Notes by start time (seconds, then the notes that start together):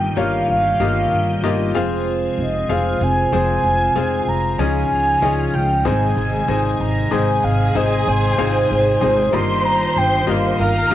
Already playing: G1 G2 D#3 G3 A#3 D#4 F4 G4 A#4 D#5 G5
0.16 G1 G3 A#3 D#4 F4 G4 A#4 C#5 F5
0.48 G1 F5
0.79 G1 G3 A#3 D#4 F4 G4 A#4 D#5
1.12 G1
1.42 G1 G3 A#3 D#4 F4 G4 A#4 D#5
1.74 F1 C3 F3 G#3 C4 F4 G#4 F5
2.38 F1 D#5
2.69 F1 G#3 C4 F4 G#4 F5
3.00 F1 C4 F4 G#4 G#5
3.32 F1 F3 G#3 C4 F4 G#4 C5 G#5
3.64 F1
3.95 F1 G#3 C4 F4 G#4 F5
4.27 F1 A#5
4.58 C#2 C#3 F3 G#3 C#4 D#4 F4 G#4 D#5 G#5
4.90 C#2
5.21 C#2 G#3 C#4 D#4 F4 G#4 D#5
5.54 C#2 G5
5.85 G#1 G#2 C3 D#3 G#3 C4 D#4 G#4 D#5 G#5
6.16 G#1
6.48 G#1 G#3 C4 D#4 G#4 D#5
6.80 G#1 A#5
7.11 G#1 G#2 C3 D#3 G#3 C4 D#4 G#4 D#5 G#5
7.44 G#1 F5
7.74 G#1 G#3 C4 D#4 G#4 C5 D#5
8.07 G#1 C5
8.38 G#1 G#2 D#3 G#3 C4 D#4 G#4 F5
8.70 G#1 C5
9.01 G#1 G#3 C4 D#4 G#4 D#5
9.32 G1 G2 D#3 G3 A#3 D#4 F4 G4 A#4 C5 D#5 C6
9.58 C6
9.65 A#5
9.96 G1 G5
10.27 G1 G3 A#3 D#4 F4 G4 A#4 D#5 F5
10.58 G1 D#4 F4 A#4 F5 A#5
10.90 G1 G3 A#3 D#4 F4 G4 D#5